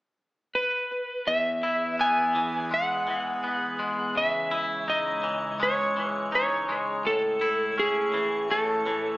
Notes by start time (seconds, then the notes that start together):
0.55 B4
1.26 E2 E3 G#4 B4 E5
1.63 E4
1.99 B3 G#5
2.35 E3
2.71 G#3 F#5
3.07 E3
3.44 B3
3.79 G#3
4.15 C#3 G#3 C#5 E5
4.51 E4
4.88 D#4 D#5
5.23 E3
5.60 G#3 C#5
5.97 E3
6.32 D#4 C#5
6.69 G#3
7.04 A2 A3 A4 C#5
7.41 E4
7.78 C#4 G#4
8.14 E3
8.50 A3 A4
8.86 E3